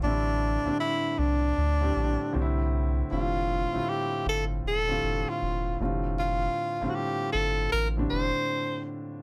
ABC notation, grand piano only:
X:1
M:4/4
L:1/16
Q:"Swing 16ths" 1/4=78
K:F
V:1 name="Grand piano" clef=bass
[A,,D,G,CE]3 [A,,D,G,CD]6 [A,,D,G,CG]3 [A,,D,G,CDE]4 | [A,,D,G,CF]3 [A,,D,G,CEF]6 [A,,D,G,CF]4- [A,,D,G,CF] [A,,D,G,CF]2- | [A,,D,G,CF]3 [A,,D,G,CF]6 [A,,D,G,CD]6 z |]